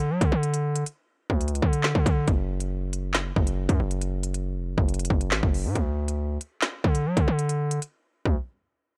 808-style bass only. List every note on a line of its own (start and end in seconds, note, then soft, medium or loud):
0.00 0.12 D3 loud
0.10 0.21 F#3 loud
0.21 0.32 D3 loud
0.32 0.84 D3 loud
1.30 1.53 D2 loud
1.52 1.62 C#2 loud
1.62 1.94 D3 loud
1.95 2.06 D3 loud
2.06 2.27 D3 loud
2.28 3.32 F#1 loud
3.36 3.68 F#1 loud
3.69 3.79 F#2 loud
3.80 4.57 F#1 loud
4.56 4.68 F1 loud
4.67 4.77 F#1 loud
4.78 5.01 F#1 loud
4.99 5.10 F1 loud
5.10 5.34 F#1 loud
5.32 5.42 A1 loud
5.43 5.66 F#1 loud
5.65 5.75 A2 loud
5.75 6.38 D2 loud
6.84 7.07 D3 loud
7.06 7.16 F#3 loud
7.17 7.27 D3 loud
7.28 7.80 D3 loud
8.25 8.36 D2 loud